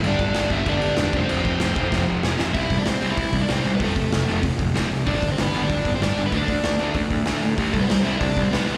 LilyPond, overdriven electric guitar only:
\new Staff \with { instrumentName = "Overdriven electric guitar" } { \time 4/4 \key g \mixolydian \tempo 4 = 191 <d' d''>4. <e' e''>8 <d' d''>4. <c' c''>8~ | <c' c''>2~ <c' c''>8 r4. | <e' e''>8. <d' d''>16 <c' c''>8. <e' e''>4 <d' d''>16 <c' c''>8. <b b'>16 | <a a'>2 r2 |
<d' d''>8. <c' c''>16 <b b'>8. <d' d''>4 <c' c''>16 <d' d''>8. <b b'>16 | <d' d''>2 r2 | r8 <a a'>16 <b b'>16 <c' c''>8 <e' e''>8 <d' d''>8. <c' c''>16 <b b'>8. r16 | }